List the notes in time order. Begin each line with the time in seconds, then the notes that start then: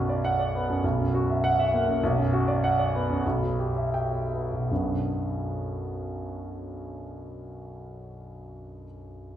Already playing: B1 F#2 F#4
0.09 D5
0.25 F#5
0.39 D5
0.55 B3
0.70 F#2
0.84 B1
0.99 F#2
1.14 F#4
1.29 E5
1.44 F#5
1.59 E5
1.74 A#3
1.88 F#2
2.03 B1
2.18 F#2
2.33 F#4
2.48 D5
2.64 F#5
2.79 D5
2.95 B3
3.10 F#2
3.26 B1
3.42 B2
3.59 G4
3.76 E5
3.94 G5
4.13 E5
4.33 B3
4.52 B2
4.71 B1 F#2 F#3 B3 D4 F#4